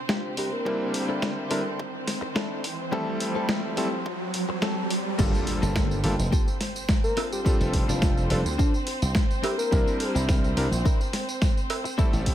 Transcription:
Already playing: C4 C5, riser
0.09 D4 F4 G4, kick, snare
0.37 C4 D4 E4 G4 A#4, open hi-hat
0.53 A#4
0.65 G3 A#3 C4 D4 E4, kick
0.94 muted clean electric guitar stroke, open hi-hat
1.08 C4 D4 E4 A4
1.22 kick, snare
1.50 G3 C4 D4 E4 A4 A#4, open hi-hat
1.79 kick
2.07 muted clean electric guitar stroke, snare, open hi-hat
2.21 muted clean electric guitar stroke
2.35 C4 D4 E4 A4, kick, snare
2.64 open hi-hat
2.92 G3 A3 C4 E4 G4 A4, kick
3.20 muted clean electric guitar stroke, open hi-hat
3.35 C4 G4 A4
3.49 kick, snare
3.77 G3 A3 C4 E4 G4 A4 C5, open hi-hat
4.06 kick
4.34 muted clean electric guitar stroke, open hi-hat
4.49 muted clean electric guitar stroke
4.62 C4 G4 A4, kick, snare
4.90 open hi-hat
5.18 G1 G3 A#3 C4 D4 F4 G4 A4 C5, kick, crash, tambourine, impact
5.34 tambourine
5.47 open hi-hat
5.62 G1 A#3 F4 G4 A4, tambourine
5.76 kick, snare, tambourine
5.91 tambourine
6.03 G1 G3 A#3 D4 F4 A4, open hi-hat
6.19 F1, tambourine
6.32 A#3 F4 G4 A4, kick, tambourine
6.48 tambourine
6.61 muted clean electric guitar stroke, snare, open hi-hat
6.76 tambourine
6.89 kick, snare, tambourine
7.04 A#4, tambourine
7.17 C4 D4 F4 A4, open hi-hat, cowbell
7.32 G4, tambourine
7.45 G3 C4 D4 F4 G4 A4, muted slap bass stroke, kick, tambourine
7.61 F1, tambourine
7.73 kick, open hi-hat
7.88 F1 C4 D4 F4 A4, tambourine
8.02 kick, snare, tambourine
8.17 tambourine
8.30 F1 G3 C4 D4 F4 A4, open hi-hat
8.45 D2, tambourine
8.58 C4 D4 F4 A4, kick, tambourine
8.74 tambourine
8.87 muted clean electric guitar stroke, open hi-hat
9.02 C2, tambourine
9.15 kick, snare, tambourine
9.31 tambourine
9.43 C4 D4 E4 G4 A#4, open hi-hat, cowbell
9.58 A#4, tambourine
9.71 C2 G3 C4 D4 E4 A#4, kick, tambourine
9.87 tambourine
10.00 open hi-hat
10.15 C2 C4 D4 E4 C5, tambourine
10.29 kick, snare, tambourine
10.44 tambourine
10.57 C2 G3 C4 D4 E4 A#4, open hi-hat
10.71 A#1, tambourine
10.85 C4 D4 E4 A#4, kick, tambourine
11.01 tambourine
11.13 muted clean electric guitar stroke, snare, open hi-hat
11.29 tambourine
11.42 kick, snare, tambourine
11.57 tambourine
11.70 open hi-hat, cowbell
11.84 muted clean electric guitar stroke, tambourine
11.98 G3 A3 C4 E4 G4 A4, muted slap bass stroke, kick, tambourine
12.13 A1, tambourine
12.26 kick, open hi-hat

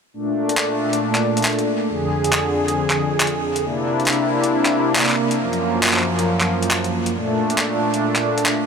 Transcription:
0.14 A#2 A3 D4
0.49 closed hi-hat
0.58 clap
0.93 closed hi-hat
1.15 clap, closed hi-hat
1.37 closed hi-hat
1.42 clap, closed hi-hat
1.45 closed hi-hat
1.50 closed hi-hat
1.52 closed hi-hat
1.59 closed hi-hat
1.89 F2 D3 G#4
2.24 closed hi-hat
2.33 clap
2.68 closed hi-hat
2.90 clap, closed hi-hat
3.20 clap, closed hi-hat
3.27 closed hi-hat
3.56 closed hi-hat
3.64 C3 A#3 D4 E4
4.00 closed hi-hat
4.05 clap, closed hi-hat
4.13 closed hi-hat
4.44 closed hi-hat
4.65 clap, closed hi-hat
4.96 clap, closed hi-hat
4.99 clap
5.02 clap
5.06 clap
5.09 clap, closed hi-hat
5.11 clap
5.13 clap
5.15 clap
5.31 closed hi-hat
5.39 F#2 F3
5.53 closed hi-hat
5.83 clap, closed hi-hat
5.87 clap
5.90 clap
5.93 clap
5.97 clap
5.99 clap
6.01 clap
6.03 clap
6.19 closed hi-hat
6.41 clap, closed hi-hat
6.63 closed hi-hat
6.71 clap
6.84 closed hi-hat
7.06 closed hi-hat
7.15 A#2 A3 D4
7.50 closed hi-hat
7.58 clap
7.94 closed hi-hat
8.16 clap, closed hi-hat
8.38 closed hi-hat
8.46 clap

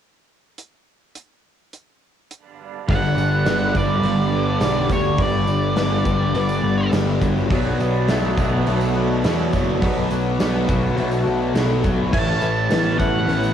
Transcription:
0.58 closed hi-hat
1.15 closed hi-hat
1.73 closed hi-hat
2.31 closed hi-hat
2.88 G1 G2 D3 G3 B3 D4 G4 D5 F#5 B5, kick, open hi-hat, tambourine
3.17 G1, tambourine
3.32 tambourine
3.45 G1 G2 D3 G3 B3, snare, open hi-hat, tambourine
3.74 G1 G2 D3 G3 D5, kick, tambourine
4.03 G1 G2 D3 G3 B3, open hi-hat, tambourine
4.32 D3 G3
4.61 B1 G2 D3 G3, snare, open hi-hat, tambourine
4.90 D2 G2 D3 G3 C#5, kick, snare, tambourine
5.05 tambourine
5.18 G1 G2 D3 G3, kick, open hi-hat, tambourine
5.22 D5
5.47 G1, tambourine
5.63 tambourine
5.76 G1 G2 D3 G3 B3, snare, open hi-hat, tambourine
5.92 tambourine
6.05 G1 G2 D3 G3, kick, tambourine
6.34 G1 G2 D3 G3 B3, open hi-hat, tambourine
6.49 tambourine
6.63 G1 D3 G3
6.92 G1 G2 D3 G3, snare, open hi-hat, tambourine
7.21 G1 G2 D3 F#3 G3, kick, tambourine
7.37 tambourine
7.50 B1 B2 F#3 B3 D4 A4 D5, kick, open hi-hat, tambourine
7.80 B1 F#3, tambourine
7.95 tambourine
8.08 B1 B2 F#3 A3 B3, snare, open hi-hat, tambourine
8.24 tambourine
8.37 B1 B2 F#3 B3, kick, tambourine
8.66 B1 B2 F#3 A3 B3, open hi-hat, tambourine
8.81 tambourine
8.95 F#3 B3
9.24 E2 B2 F#3 B3, snare, open hi-hat, tambourine
9.53 F#1 B2 F#3 B3, kick, snare, tambourine
9.68 tambourine
9.82 B1 B2 F#3 B3, kick, open hi-hat, tambourine
9.96 tambourine
10.11 B1 F#3, tambourine
10.26 tambourine
10.39 B1 B2 F#3 A3 B3, snare, open hi-hat, tambourine
10.68 B1 B2 F#3 B3, kick, tambourine
10.83 tambourine
10.96 B1 B2 F#3 A3 B3, open hi-hat
11.11 tambourine
11.25 B1 F#3 B3, tambourine
11.30 F#3
11.40 tambourine
11.54 B1 B2 F#3 B3, snare, open hi-hat, tambourine
11.69 tambourine
11.83 B1 B2 F#3 B3, kick, tambourine
12.12 A1 A2 E3 A3 C#4 E4 C#5 E5 A5, kick, crash, tambourine
12.41 A1 E3, tambourine
12.57 tambourine
12.70 A1 A2 E3 A3 B3, snare, open hi-hat, tambourine
12.85 tambourine
12.99 A1 A2 E3 A3 F#5, kick, tambourine
13.28 A1 A2 E3 A3 B3, open hi-hat, tambourine
13.43 tambourine

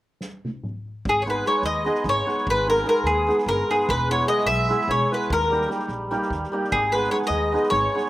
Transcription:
0.21 snare
0.45 high tom
0.63 mid tom
1.05 G#1 G#4, kick
1.21 C#5
1.26 G#3 B3 D#4 G#4 B4, snare
1.30 B4
1.44 G#3 B3 D#4 G#4 C#5, snare
1.62 D#2 D#5, snare
1.85 G#3 B3 D#4 G#4, snare
1.95 snare
2.04 G#1, kick, snare
2.09 C#5
2.26 G#3 B3 D#4 G#4, snare
2.38 snare
2.47 G#1 B4, kick
2.67 G#3 B3 D#4 G#4 A#4, snare
2.76 snare
2.84 G#3 B3 D#4 G#4 A#4, snare
2.89 A#4
2.95 snare
3.04 D#2 G#4, snare
3.27 G#3 B3 D#4 G#4, snare
3.38 snare
3.46 G1 A#4, kick, snare
3.69 G#3 B3 D#4 G#4, snare
3.80 snare
3.88 E1 B4, kick
4.09 G#3 B3 E4 G#4 C#5, snare
4.20 snare
4.26 G#3 B3 E4 G#4 D#5, snare
4.38 snare
4.45 B1 E5, snare
4.69 G#3 B3 E4 G#4, snare
4.80 snare
4.88 E1 C#5, kick, snare
5.11 G#3 B3 E4 G#4 B4, snare
5.22 snare
5.30 D#2 A#4, kick
5.42 snare
5.50 G3 A#3 D#4 G4, snare
5.61 snare
5.68 G3 A#3 D#4 G4, snare
5.79 snare
5.88 A#1, snare
6.11 G3 A#3 D#4 G4, snare
6.22 snare
6.30 D#2, kick, snare
6.43 snare
6.52 G3 A#3 D#4 G4
6.64 snare
6.72 G#1 G#4, kick
6.92 G#3 B3 D#4 G#4 B4, snare
7.04 snare
7.09 G#3 B3 D#4 G#4 C#5, snare
7.22 snare
7.27 D#2 D#5, snare
7.53 G#3 B3 D#4 G#4, snare
7.63 snare
7.70 G#1 C#5, kick, snare
7.94 G#3 B3 D#4 G#4, snare
8.06 snare

